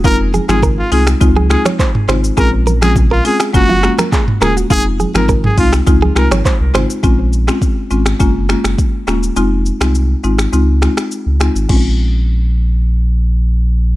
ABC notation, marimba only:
X:1
M:4/4
L:1/16
Q:1/4=103
K:Bbm
V:1 name="Marimba"
[A,CEF]2 z [A,CEF] z2 [A,CEF]2 [A,CEF]2 [A,CEF]2 z2 [A,CEF]2 | [A,CDF]2 z [A,CDF] z2 [A,CDF]2 [A,B,DF]2 [A,B,DF]2 z2 [A,B,DF]2 | [A,CEF]2 z [A,CEF] z2 [A,CEF]2 [A,CEF]2 [A,CEF]2 z2 [A,CEF]2 | [A,CDF]2 z [A,CDF] z2 [A,CDF]2 [A,B,DF]2 [A,B,DF]2 z2 [A,B,DF]2 |
[A,CEF]2 z [A,CEF] z2 [A,CEF]2 [A,CEF]2 [A,CEF]2 z2 [A,CEF]2 | [A,CDF]16 |]